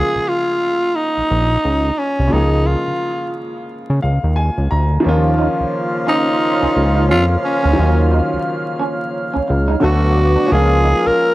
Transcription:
Already playing: grand piano C#3 F3 G#3 A#3 F4, tenor saxophone G#4
0.15 analog synth bass A#1
0.28 tenor saxophone F4
0.96 tenor saxophone D#4
1.17 analog synth bass A#1
1.31 analog synth bass A#1
1.65 analog synth bass C#2
1.98 tenor saxophone C#4
2.19 analog synth bass C2
2.27 grand piano C#3 F3
2.32 analog synth bass C#2, grand piano G#3 A#3, tenor saxophone D#4
2.36 grand piano G#4
2.66 tenor saxophone F4
2.88 analog synth bass C#3
3.90 analog synth bass C#3
4.02 analog synth bass C#2, grand piano F5
4.24 analog synth bass D#2
4.36 grand piano G#5
4.58 analog synth bass C#2
4.71 analog synth bass D2, grand piano A#5
5.00 horn section C#3 F3 A#3 F4, grand piano D#3 F3 A#3, analog synth pad C#5 F5 F6
5.06 analog synth bass D#2, grand piano F3 C#4 F4
5.39 clean electric guitar D#4
5.60 analog synth bass C#2
6.07 clean electric guitar C#4, tenor saxophone D#4
6.61 analog synth bass C#2, clean electric guitar C#4
6.75 analog synth bass C#2, muted clean electric guitar stroke
6.95 clean electric guitar D#4
7.09 analog synth bass F2, clean electric guitar C#4, tenor saxophone F4
7.43 tenor saxophone C#4, muted clean electric guitar stroke
7.63 analog synth bass D2, clean electric guitar C#4
7.73 grand piano D#3 F#3
7.77 analog synth bass D#2, grand piano A#3 C#4 F4
8.11 clean electric guitar D#4
8.33 analog synth bass C#2
8.79 clean electric guitar C#4
9.34 analog synth bass C#2, clean electric guitar C#4
9.48 analog synth bass C#2, muted clean electric guitar stroke
9.68 clean electric guitar D#4
9.80 analog synth bass D2, grand piano D3 F#3 A3 B3, horn section F#3 A3 D4 A4, clean electric guitar D4, tenor saxophone F#4, analog synth pad B4 D6
9.84 grand piano F#4
10.16 muted clean electric guitar stroke
10.36 clean electric guitar D4
10.46 grand piano F3 G#3 C#4, horn section F3 A#3 C#4 F4, analog synth pad A#4 F5 A#5
10.52 analog synth bass C#2, grand piano A#3 F4, tenor saxophone G#4
10.84 clean electric guitar D#4
11.06 analog synth bass C2, tenor saxophone A#4

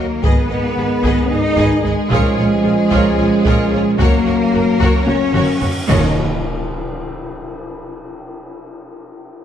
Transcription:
Already playing: trombone section D#3 F#3, cello section A#3, french horn section A#3, violin section A#4
0.22 double bass section G#1, trombone section G#3, french horn section B3, cello section B3, viola section G#4, violin section B4 D#5, taiko
0.50 double bass section G#1, viola section G#4, violin section B4 D#5
0.77 double bass section G#1, violin section G#4 B4, viola section G#4
1.03 double bass section G#1, viola section G#4, violin section B4 D#5, taiko
1.30 double bass section G#1, french horn section D#4, cello section D#4, viola section G#4, violin section B4 D#5
1.56 double bass section G#1, viola section G#4, violin section B4 D#5, taiko
1.83 double bass section G#1, french horn section G#3, cello section G#3, viola section G#4, violin section G#4 B4 D#5
2.10 double bass section A#1, trombone section F3 C#4, viola section F4 G#4, violin section A#4 C#5, taiko
2.36 double bass section A#1, viola section F4 G#4, violin section A#4 C#5
2.64 double bass section A#1, viola section F4 G#4, violin section G#4 A#4
2.91 double bass section A#1, viola section F4 G#4, violin section A#4 C#5, taiko
3.18 double bass section A#1, viola section F4 G#4, violin section A#4 C#5
3.45 double bass section A#1, viola section F4 G#4, violin section A#4 C#5, taiko
3.72 double bass section A#1, viola section F4 G#4, violin section A#4 C#5
3.98 double bass section F#1, trombone section F#3, french horn section A#3, cello section A#3, viola section F#4, violin section A#4 C#5, taiko, cymbal swell
4.26 double bass section F#1, viola section F#4, violin section A#4 C#5
4.54 double bass section F#1, viola section F#4, violin section F#4 A#4
4.80 double bass section F#1, viola section F#4, violin section A#4 C#5, taiko
5.07 double bass section F#1, french horn section C#4, cello section C#4, viola section F#4, violin section A#4 C#5, taiko high
5.34 double bass section F#1, viola section F#4, violin section A#4 C#5, taiko mid
5.61 double bass section F#1, viola section F#4, violin section A#4 C#5, taiko low
5.88 double bass section D#2, timpani D#3, cello section D#3, trombone section F#3 C#4, french horn section D#4, viola section F#4, violin section A#4 C#5 D#5, taiko low, tam-tam, impact

